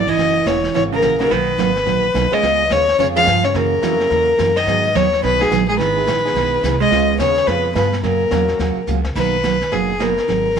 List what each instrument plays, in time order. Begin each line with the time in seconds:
Already playing: upright bass G#1
0.00 fiddle D5
0.07 hollow-body jazz guitar E3, fiddle D#5, kick, crash
0.18 upright bass F#1, steel-string acoustic guitar C#3 E3 A#3 C#4 F#4, brush sweep, snare
0.46 upright bass E1, steel-string acoustic guitar C#3 E3 A#3 C#4 F#4, hollow-body jazz guitar E3, fiddle C#5, snare, hi-hat pedal
0.64 snare
0.73 upright bass G#1, steel-string acoustic guitar C#3 E3 A#3 C#4 F#4, hollow-body jazz guitar E3, fiddle C#5, brush sweep, snare
0.92 hollow-body jazz guitar C#3, fiddle A#4
1.02 upright bass A#1, steel-string acoustic guitar C#3 E3 A#3 C#4 F#4, snare, hi-hat pedal
1.19 hollow-body jazz guitar C#3, upright piano F#3 A#3 B3 D#4 F#4, fiddle A#4, snare
1.30 upright bass B1, steel-string acoustic guitar B2 F#3 A#3 D#4 F#4, hollow-body jazz guitar D#3, fiddle B4, brush sweep, snare
1.58 upright bass G#1, steel-string acoustic guitar B2 F#3 A#3 D#4 F#4, snare, hi-hat pedal
1.76 snare
1.86 upright bass A#1, steel-string acoustic guitar B2 F#3 A#3 D#4 F#4, brush sweep, snare
2.14 upright bass B1, steel-string acoustic guitar B2 F#3 A#3 D#4 F#4, snare, hi-hat pedal
2.31 upright piano G#3 B3 C#4 F4 G#4, hollow-body jazz guitar G#3, fiddle D#5, snare
2.42 upright bass C#2, steel-string acoustic guitar C#3 G#3 B3 F4 G#4, brush sweep, snare
2.70 upright bass D#2, steel-string acoustic guitar C#3 G#3 B3 F4 G#4, hollow-body jazz guitar C#3, fiddle C#5, snare, hi-hat pedal
2.88 snare
2.98 upright bass F2, steel-string acoustic guitar C#3 G#3 B3 F4 G#4, hollow-body jazz guitar C#3, fiddle C#5, brush sweep, snare
3.16 hollow-body jazz guitar F3, upright piano G#3 B3 C#4 F4 G#4, fiddle F5
3.26 upright bass G2, steel-string acoustic guitar C#3 G#3 B3 F4 G#4, snare, hi-hat pedal
3.44 hollow-body jazz guitar C#3, fiddle C#5, snare
3.54 upright bass F#2, steel-string acoustic guitar C#3 E3 A#3 C#4 F#4, hollow-body jazz guitar C#3, fiddle A#4, brush sweep, snare
3.82 upright bass F2, steel-string acoustic guitar C#3 E3 A#3 C#4 F#4, upright piano F#3 A#3 C#4 E4 F#4, snare, hi-hat pedal
4.00 snare
4.10 upright bass E2, steel-string acoustic guitar C#3 E3 A#3 C#4 F#4, brush sweep, snare
4.39 upright bass F#2, steel-string acoustic guitar C#3 E3 A#3 C#4 F#4, snare, hi-hat pedal
4.56 hollow-body jazz guitar D#3, fiddle D#5, snare
4.66 upright bass G#2, steel-string acoustic guitar D#3 F#3 B3 D#4 G#4, upright piano G#3 B3 D#4 F#4 G#4, brush sweep, snare
4.95 upright bass D#2, steel-string acoustic guitar D#3 F#3 B3 D#4 G#4, hollow-body jazz guitar F#3, fiddle C#5, snare, hi-hat pedal
5.13 snare
5.23 upright bass B1, hollow-body jazz guitar B2, steel-string acoustic guitar D#3 F#3 B3 D#4 G#4, fiddle B4, brush sweep, snare
5.40 hollow-body jazz guitar G#2, upright piano G#3 B3 D#4 F#4 G#4, fiddle G#4, snare
5.51 upright bass A#1, steel-string acoustic guitar D#3 F#3 B3 D#4 G#4, snare, hi-hat pedal
5.68 hollow-body jazz guitar G#2, fiddle G#4
5.79 upright bass G#1, hollow-body jazz guitar D#3, steel-string acoustic guitar D#3 G#3 B3 E4 G#4, fiddle B4, brush sweep, snare
5.96 upright piano G#3 B3 D#4 E4 G#4
6.07 upright bass A#1, steel-string acoustic guitar D#3 G#3 B3 E4 G#4, snare, hi-hat pedal
6.17 snare
6.24 upright piano G#3 B3 D#4 G#4, snare
6.35 upright bass B1, steel-string acoustic guitar D#3 G#3 B3 E4 G#4, brush sweep, snare
6.63 upright bass C2, steel-string acoustic guitar D#3 G#3 B3 E4 G#4, snare, hi-hat pedal
6.80 hollow-body jazz guitar G#3, fiddle D#5, snare
6.91 upright bass C#2, steel-string acoustic guitar C#3 G#3 B3 F4 G#4, upright piano G#3 B3 C#4 F4 G#4, brush sweep, snare
7.19 upright bass D#2, steel-string acoustic guitar C#3 G#3 B3 F4 G#4, hollow-body jazz guitar C#3, fiddle C#5, snare, hi-hat pedal
7.37 snare
7.47 upright bass F2, hollow-body jazz guitar B2, steel-string acoustic guitar C#3 G#3 B3 F4 G#4, fiddle B4, brush sweep, snare
7.75 upright bass G2, hollow-body jazz guitar B2, steel-string acoustic guitar C#3 G#3 B3 F4 G#4, fiddle B4, snare, hi-hat pedal
7.93 snare
8.03 upright bass F#2, hollow-body jazz guitar A#2, steel-string acoustic guitar C#3 F#3 A#3 C#4 F#4, fiddle A#4, brush sweep, snare
8.31 upright bass E2, steel-string acoustic guitar C#3 F#3 A#3 C#4 F#4, upright piano F#3 A#3 C#4 F#4 A#4, snare, hi-hat pedal
8.48 snare
8.59 upright bass D#2, steel-string acoustic guitar C#3 F#3 A#3 C#4 F#4, brush sweep, snare
8.77 muted upright bass stroke
8.87 upright bass C#2, steel-string acoustic guitar C#3 F#3 A#3 C#4 F#4, hi-hat pedal
9.04 snare
9.15 upright bass B1, steel-string acoustic guitar B2 F#3 A#3 D#4 F#4, hollow-body jazz guitar D#3, fiddle B4, brush sweep, kick, snare, crash
9.44 steel-string acoustic guitar B2 F#3 A#3 D#4 F#4, snare, hi-hat pedal
9.61 snare
9.72 upright bass F#1, hollow-body jazz guitar A#2, steel-string acoustic guitar B2 F#3 A#3 D#4 F#4, fiddle G#4, brush sweep, snare
9.99 steel-string acoustic guitar B2 F#3 A#3 D#4 F#4, hollow-body jazz guitar B2, fiddle A#4, snare, hi-hat pedal
10.17 snare
10.28 upright bass G#1, steel-string acoustic guitar D#3 F#3 C4 D#4 G#4, brush sweep, snare
10.56 steel-string acoustic guitar D#3 F#3 C4 D#4